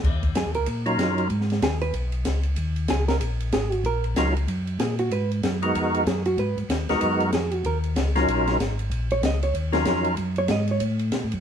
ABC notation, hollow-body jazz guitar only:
X:1
M:4/4
L:1/8
Q:"Swing" 1/4=189
K:Ebm
V:1 name="Hollow-body jazz guitar"
z2 A B z4 | z2 A c z4 | z2 A B z2 A G | B z4 z A G |
c z4 z A G | c z4 z A G | B z6 z | z d e d z4 |
z d e d z4 |]